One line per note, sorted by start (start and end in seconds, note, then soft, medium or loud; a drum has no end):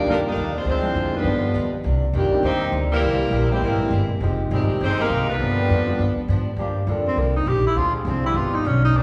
0.00 0.34 G3 medium
0.00 0.34 A#3 medium
0.00 0.35 D4 medium
0.00 0.35 D#4 medium
0.00 0.35 F4 medium
0.06 0.35 F2 medium
0.06 0.16 D3 medium
0.06 0.26 D#3 soft
0.06 0.26 G3 soft
0.06 0.16 G3 medium
0.06 0.17 G3 medium
0.06 0.27 A#3 soft
0.06 0.16 A#3 medium
0.06 0.27 D4 medium
0.06 0.17 D#4 medium
0.06 0.17 A#4 medium
0.10 0.18 D4 medium
0.25 0.53 D3 medium
0.25 0.53 G3 medium
0.25 0.54 G3 medium
0.25 0.53 A#3 medium
0.25 0.54 D4 medium
0.25 0.54 D#4 medium
0.25 0.54 A#4 medium
0.36 0.64 D#2 medium
0.36 0.56 D#3 medium
0.36 0.56 G3 medium
0.36 0.56 A#3 medium
0.36 0.57 D4 medium
0.56 0.67 G#3 medium
0.56 0.66 C4 medium
0.56 0.67 D4 medium
0.56 0.67 F4 medium
0.56 0.67 C5 medium
0.65 0.94 D2 medium
0.65 0.85 D3 soft
0.65 1.12 F3 medium
0.65 0.86 G#3 medium
0.65 1.12 G#3 medium
0.65 0.86 C4 medium
0.65 1.12 C4 medium
0.65 1.12 D4 medium
0.65 0.86 F4 medium
0.65 1.12 F4 medium
0.65 1.12 C5 loud
0.83 0.94 F3 medium
0.83 0.94 G#3 medium
0.83 0.94 C4 medium
0.83 0.94 D4 medium
0.83 0.95 E4 medium
0.94 1.23 F2 medium
0.94 1.15 D3 soft
0.94 1.15 G#3 medium
0.94 1.15 C4 soft
0.94 1.16 F4 medium
1.12 1.24 D#3 medium
1.12 1.24 G3 medium
1.12 1.24 B3 medium
1.12 1.24 D4 medium
1.12 1.70 D4 medium
1.12 1.24 F4 medium
1.17 1.71 D3 medium
1.17 1.71 F3 medium
1.17 1.71 G3 medium
1.17 1.71 B3 medium
1.17 1.71 F4 medium
1.17 1.71 B4 medium
1.24 1.53 G2 medium
1.24 1.44 G2 soft
1.24 1.45 F3 medium
1.24 1.45 B3 medium
1.24 1.45 D#4 soft
1.54 1.71 D#2 medium
1.54 1.74 G2 medium
1.54 1.74 F3 medium
1.54 1.75 B3 medium
1.54 1.75 D#4 medium
1.72 muted upright bass stroke soft
1.84 2.13 C2 medium
1.84 2.04 C3 medium
1.84 2.04 D#3 medium
1.84 2.04 A#3 medium
1.84 2.05 D4 medium
2.13 2.31 F2 medium
2.13 2.43 A#2 medium
2.13 2.33 C3 soft
2.13 2.34 D#3 medium
2.13 2.42 D#3 medium
2.13 2.43 D#3 medium
2.13 2.43 G3 medium
2.13 2.34 A#3 medium
2.13 2.43 A#3 medium
2.13 2.34 D4 medium
2.13 2.42 D4 medium
2.13 2.43 G4 medium
2.31 2.71 D#3 medium
2.31 2.71 A#3 medium
2.31 2.71 C4 medium
2.31 2.71 D4 medium
2.31 2.72 G4 medium
2.31 muted upright bass stroke soft
2.43 2.72 D#2 medium
2.43 2.63 C3 soft
2.43 2.64 D#3 medium
2.43 2.72 D#3 medium
2.43 2.72 G3 medium
2.43 2.64 A#3 soft
2.43 2.72 A#3 medium
2.43 2.72 C4 medium
2.43 2.64 D4 soft
2.43 2.72 D#4 medium
2.43 2.72 G4 medium
2.43 2.72 C5 loud
2.72 3.02 D2 medium
2.72 2.92 C3 medium
2.72 2.93 D#3 medium
2.72 2.93 A#3 medium
2.72 2.93 D4 medium
2.92 3.48 E3 medium
2.92 3.47 G3 medium
2.92 3.47 A#3 medium
2.92 3.47 C4 medium
2.92 3.47 E4 medium
2.92 3.47 A#4 loud
3.02 3.30 C2 medium
3.02 3.22 C3 soft
3.02 3.22 G#3 soft
3.02 3.22 A#3 medium
3.02 3.23 E4 medium
3.31 3.60 A#1 medium
3.31 3.52 C3 medium
3.31 3.52 G#3 medium
3.31 3.52 A#3 medium
3.31 3.53 E4 medium
3.50 3.62 E3 medium
3.50 3.62 G3 medium
3.50 3.78 G#3 medium
3.50 3.78 A#3 medium
3.50 3.62 A#3 medium
3.50 3.79 C4 medium
3.50 3.63 C4 medium
3.50 3.79 E4 medium
3.50 3.62 E4 medium
3.50 3.79 G4 medium
3.50 3.62 G4 medium
3.50 3.62 C5 medium
3.61 3.79 G#1 medium
3.61 3.81 C3 soft
3.61 4.08 E3 medium
3.61 4.08 G3 medium
3.61 3.82 G#3 soft
3.61 3.82 A#3 medium
3.61 4.08 A#3 medium
3.61 4.08 C4 medium
3.61 3.82 E4 soft
3.61 4.08 E4 medium
3.61 4.08 A#4 medium
3.80 3.91 G#3 medium
3.80 3.92 A#3 medium
3.80 3.91 C4 medium
3.80 3.92 E4 medium
3.80 3.92 G4 medium
3.80 muted upright bass stroke soft
3.91 4.08 G1 medium
3.91 4.11 C3 medium
3.91 4.11 G#3 medium
3.91 4.12 A#3 medium
3.91 4.12 E4 medium
4.10 muted upright bass stroke soft
4.20 4.50 F1 medium
4.20 4.41 F3 medium
4.20 4.66 G#3 medium
4.20 4.41 G#3 medium
4.20 4.66 C4 medium
4.20 4.66 D#4 medium
4.20 4.42 D#4 medium
4.20 4.66 F4 medium
4.20 4.67 G4 medium
4.20 4.42 G4 medium
4.50 4.68 G#1 medium
4.50 4.79 C3 medium
4.50 4.79 D#3 medium
4.50 4.80 D#3 medium
4.50 4.70 F3 medium
4.50 4.79 G3 medium
4.50 4.71 G#3 medium
4.50 4.79 G#3 medium
4.50 4.79 C4 medium
4.50 4.71 D#4 medium
4.50 4.71 G4 medium
4.50 4.79 G4 medium
4.69 muted upright bass stroke soft
4.80 5.09 G1 medium
4.80 4.97 D#3 medium
4.80 5.00 F3 medium
4.80 5.00 G#3 medium
4.80 4.98 G#3 medium
4.80 4.99 G#3 medium
4.80 4.98 C4 medium
4.80 5.01 D#4 medium
4.80 4.99 D#4 medium
4.80 5.01 G4 medium
4.80 4.99 G4 medium
4.80 4.99 C5 loud
4.98 5.27 C3 medium
4.98 5.26 D#3 medium
4.98 5.27 G#3 medium
4.98 5.26 A#3 medium
4.98 5.27 D#4 medium
4.98 5.27 G4 medium
4.98 5.27 A#4 loud
5.10 5.39 C2 medium
5.10 5.30 F3 medium
5.10 5.30 G#3 medium
5.10 5.30 D#4 medium
5.10 5.31 G4 medium
5.29 6.26 D3 medium
5.29 6.26 F3 medium
5.29 6.25 G3 medium
5.29 6.25 B3 medium
5.29 6.25 D4 medium
5.29 6.25 F4 medium
5.29 6.25 B4 loud
5.39 5.68 G2 medium
5.39 5.59 G2 medium
5.39 5.60 F3 medium
5.39 5.60 B3 soft
5.39 5.60 D4 medium
5.58 5.68 G3 medium
5.58 5.68 B3 medium
5.58 5.68 D4 medium
5.58 5.68 F4 medium
5.58 5.69 G4 medium
5.69 5.98 F2 medium
5.69 5.89 G2 medium
5.69 5.89 F3 medium
5.69 5.90 B3 medium
5.69 5.90 D4 medium
5.87 5.98 G3 medium
5.87 5.98 B3 medium
5.87 5.98 D4 medium
5.87 5.98 F4 medium
5.87 5.98 G4 medium
5.99 6.16 G2 medium
5.99 6.19 G2 soft
5.99 6.19 F3 medium
5.99 6.19 B3 medium
5.99 6.20 D4 medium
6.16 muted upright bass stroke soft
6.28 6.48 G2 medium
6.28 6.56 G#2 medium
6.28 6.49 F3 medium
6.28 6.49 B3 medium
6.28 6.49 D4 medium
6.56 6.86 G2 medium
6.56 6.78 G2 medium
6.56 6.70 F3 medium
6.56 6.78 F3 medium
6.56 6.70 A#3 medium
6.56 6.78 A#3 medium
6.56 6.70 D4 medium
6.56 6.70 G4 medium
6.61 6.79 D4 medium
6.87 7.16 F2 medium
6.87 7.07 G2 medium
6.87 7.07 F3 medium
6.87 7.32 G3 medium
6.87 7.32 A#3 medium
6.87 7.08 A#3 medium
6.87 7.32 D4 medium
6.87 7.08 D4 medium
6.87 7.32 F4 medium
6.87 7.32 A4 medium
7.07 7.21 C4 medium
7.16 7.45 C2 medium
7.16 7.36 G2 soft
7.16 7.37 F3 soft
7.16 7.37 A#3 soft
7.16 7.35 A#3 medium
7.16 7.38 D4 soft
7.36 7.49 D#4 medium
7.46 7.75 A#1 medium
7.46 7.66 G2 medium
7.46 7.66 F3 medium
7.46 7.66 A#3 medium
7.46 7.66 D4 medium
7.46 7.65 G4 medium
7.67 7.79 E4 medium
7.75 8.04 D2 medium
7.75 7.96 D3 medium
7.75 8.20 F3 medium
7.75 7.96 G#3 medium
7.75 8.20 C4 medium
7.75 7.96 C4 medium
7.75 8.20 D4 medium
7.75 7.95 F4 medium
7.75 7.96 F4 medium
7.75 8.20 G#4 medium
7.95 8.10 G#3 soft
8.05 8.34 C2 medium
8.05 8.25 D3 medium
8.05 8.36 F3 soft
8.05 8.25 G#3 medium
8.05 8.35 C4 soft
8.05 8.26 C4 medium
8.05 8.25 C4 medium
8.05 8.36 D4 soft
8.05 8.36 E4 soft
8.05 8.26 F4 medium
8.05 8.36 G#4 medium
8.23 8.62 F3 medium
8.23 8.62 B3 medium
8.23 8.38 E4 medium
8.23 8.62 G4 loud
8.34 8.63 G1 medium
8.34 8.55 G2 soft
8.34 8.55 F3 soft
8.34 8.55 B3 medium
8.34 8.56 D#4 medium
8.34 8.56 F4 medium
8.55 8.69 D#4 medium
8.65 8.93 B1 medium
8.65 8.84 G2 medium
8.65 8.85 F3 medium
8.65 8.85 B3 medium
8.65 8.84 C#4 medium
8.65 8.85 D#4 medium
8.84 8.98 D#4 medium
8.94 9.03 C2 medium
8.94 9.03 C3 soft
8.94 9.03 D#3 soft
8.94 9.03 D#3 medium
8.94 9.03 A#3 soft
8.94 9.03 C4 medium
8.94 9.03 D4 medium
8.94 9.03 A#4 medium